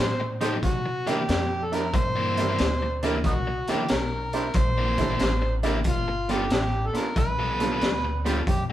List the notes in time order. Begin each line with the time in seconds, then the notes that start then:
Already playing: C5
0.00 A2
0.20 muted overdriven electric guitar stroke
0.41 F3 A3 D#4 G4 A4 C5, snare, closed hi-hat
0.63 C3 F#4, kick, closed hi-hat
0.85 muted overdriven electric guitar stroke
1.06 C3 E3 A#3 D4 E4 G4 A#4, snare, closed hi-hat
1.29 F2, muted overdriven electric guitar stroke, snare, closed hi-hat
1.64 A4
1.72 D4 E4 G4 A#4, snare, closed hi-hat
1.93 G2 C5, muted overdriven electric guitar stroke, kick, closed hi-hat
2.16 C3 E3 A#3 D4
2.37 D4 E4 G4 A#4, snare, closed hi-hat
2.49 C3 E3 A#3 D4
2.58 D2, snare, closed hi-hat
2.82 muted overdriven electric guitar stroke
3.03 C3 E3 A#3 D4 E4 G4 A#4, snare, closed hi-hat
3.24 C2 B3 D#4 F#4, kick, closed hi-hat
3.47 muted overdriven electric guitar stroke
3.67 C3 E3 A#3 D4 E4 G4 A#4, muted upright bass stroke, snare, closed hi-hat
3.88 B1 A#4, muted overdriven electric guitar stroke, snare, closed hi-hat
4.33 D4 E4 G4 A#4 C5, snare, closed hi-hat
4.54 A#1 C5, muted overdriven electric guitar stroke, kick, closed hi-hat
4.78 C3 E3 A#3 D4
4.98 D4 E4 G4 A4, kick, snare, closed hi-hat
5.10 C3 E3 A#3 D4
5.19 A1, snare, closed hi-hat
5.42 muted overdriven electric guitar stroke
5.63 C3 E3 A#3 D4 E4 G4 A#4, snare, closed hi-hat
5.84 G1, kick, closed hi-hat
5.88 F4
6.08 muted overdriven electric guitar stroke
6.28 G3 B3 D4 F4 G4 A4, snare, closed hi-hat
6.50 A1 D4 E4 G4, muted overdriven electric guitar stroke, snare, closed hi-hat
6.87 A4
6.93 B3 D4 F4 A4 A#4, muted upright bass stroke, snare, closed hi-hat
7.16 B1 B4, muted overdriven electric guitar stroke, kick, closed hi-hat
7.39 G3 B3 F4 A4
7.59 B3 D4 F4 A4, snare, closed hi-hat
7.72 G3 B3 F4 A4
7.81 D2, snare, closed hi-hat
8.04 muted overdriven electric guitar stroke
8.24 G3 B3 D4 F4 G4 A4, snare, closed hi-hat
8.47 F2 G4, kick, closed hi-hat